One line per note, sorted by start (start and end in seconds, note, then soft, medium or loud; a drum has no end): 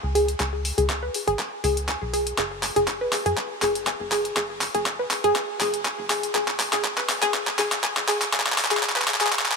0.04 0.35 C#2 medium
0.15 0.25 G#4 medium
0.15 open hi-hat medium
0.28 closed hi-hat medium
0.40 0.72 C#2 loud
0.40 0.44 G#4 medium
0.40 kick loud
0.40 clap medium
0.40 closed hi-hat soft
0.65 open hi-hat loud
0.78 1.09 C#2 medium
0.78 0.86 G#4 medium
0.78 closed hi-hat medium
0.90 kick loud
0.90 clap medium
0.90 closed hi-hat soft
1.03 1.08 B4 medium
1.14 open hi-hat medium
1.27 1.36 G#1 medium
1.27 1.33 G#4 loud
1.27 closed hi-hat medium
1.39 kick loud
1.39 clap medium
1.39 closed hi-hat soft
1.64 1.96 C#2 loud
1.64 1.73 G#4 medium
1.64 open hi-hat loud
1.77 closed hi-hat medium
1.89 1.93 G#5 medium
1.89 kick loud
1.89 clap medium
1.89 closed hi-hat soft
2.02 2.33 B1 medium
2.14 2.23 G#4 medium
2.14 open hi-hat medium
2.27 closed hi-hat medium
2.38 2.71 F#1 loud
2.38 2.42 G#4 medium
2.38 kick loud
2.38 clap medium
2.38 closed hi-hat soft
2.63 clap medium
2.63 open hi-hat loud
2.76 3.08 F#1 medium
2.76 2.85 G#4 medium
2.76 closed hi-hat medium
2.88 kick loud
2.88 clap medium
2.88 closed hi-hat soft
3.01 3.07 B4 medium
3.13 clap medium
3.13 open hi-hat medium
3.26 3.34 F#2 medium
3.26 3.31 G#4 loud
3.26 closed hi-hat medium
3.38 kick loud
3.38 clap medium
3.38 closed hi-hat soft
3.62 3.94 F#1 loud
3.62 3.72 G#4 medium
3.62 clap medium
3.62 open hi-hat loud
3.75 closed hi-hat medium
3.87 3.91 G#5 medium
3.87 kick loud
3.87 clap medium
3.87 closed hi-hat medium
4.00 4.32 F#1 medium
4.12 4.21 G#4 medium
4.12 clap medium
4.12 open hi-hat medium
4.25 closed hi-hat medium
4.37 4.69 F#1 loud
4.37 4.41 G#4 medium
4.37 kick loud
4.37 clap medium
4.37 closed hi-hat medium
4.61 clap medium
4.61 open hi-hat loud
4.75 5.06 F#1 medium
4.75 4.83 G#4 medium
4.75 closed hi-hat medium
4.86 kick loud
4.86 clap medium
4.86 closed hi-hat soft
4.99 5.05 B4 medium
5.11 clap medium
5.11 open hi-hat medium
5.24 5.33 F#2 medium
5.24 5.30 G#4 loud
5.24 closed hi-hat medium
5.36 kick loud
5.36 clap medium
5.36 closed hi-hat medium
5.61 5.93 F#1 loud
5.61 5.70 G#4 medium
5.61 clap medium
5.61 open hi-hat loud
5.74 closed hi-hat medium
5.85 5.89 G#5 medium
5.85 kick loud
5.85 clap medium
5.85 closed hi-hat medium
5.99 6.30 F#1 medium
6.10 6.20 G#4 medium
6.10 clap medium
6.10 open hi-hat medium
6.23 closed hi-hat medium
6.35 6.67 B1 loud
6.35 6.39 G#4 medium
6.35 kick loud
6.35 clap medium
6.35 closed hi-hat medium
6.48 clap medium
6.60 clap medium
6.60 open hi-hat loud
6.73 7.04 B1 medium
6.73 6.81 G#4 medium
6.73 clap medium
6.73 closed hi-hat medium
6.85 kick loud
6.85 clap medium
6.85 closed hi-hat medium
6.98 7.03 B4 medium
6.98 clap medium
7.09 clap loud
7.09 open hi-hat medium
7.22 7.31 F#1 medium
7.22 7.28 G#4 loud
7.22 clap medium
7.22 closed hi-hat medium
7.34 kick loud
7.34 clap medium
7.34 closed hi-hat medium
7.47 clap medium
7.59 7.91 B1 loud
7.59 7.68 G#4 medium
7.59 clap loud
7.59 open hi-hat loud
7.72 clap medium
7.72 closed hi-hat medium
7.84 7.87 G#5 medium
7.84 kick loud
7.84 clap loud
7.84 closed hi-hat medium
7.97 8.28 B1 loud
7.97 clap medium
8.08 8.18 G#4 medium
8.08 clap loud
8.08 open hi-hat medium
8.22 clap medium
8.22 closed hi-hat medium
8.33 8.66 B1 loud
8.33 8.37 G#4 medium
8.33 kick loud
8.33 clap loud
8.33 closed hi-hat medium
8.40 clap medium
8.46 clap medium
8.52 clap medium
8.58 clap loud
8.58 open hi-hat loud
8.65 clap medium
8.71 9.03 B1 medium
8.71 8.80 G#4 medium
8.71 clap medium
8.71 closed hi-hat medium
8.77 clap medium
8.83 kick loud
8.83 clap loud
8.83 closed hi-hat medium
8.90 clap medium
8.96 9.02 B4 medium
8.96 clap medium
9.02 clap medium
9.08 kick medium
9.08 clap loud
9.08 open hi-hat medium
9.14 clap medium
9.21 9.29 F#1 medium
9.21 9.26 G#4 loud
9.21 clap loud
9.21 closed hi-hat medium
9.27 clap loud
9.33 kick loud
9.33 clap loud
9.33 closed hi-hat medium
9.39 clap medium
9.46 clap medium
9.52 clap medium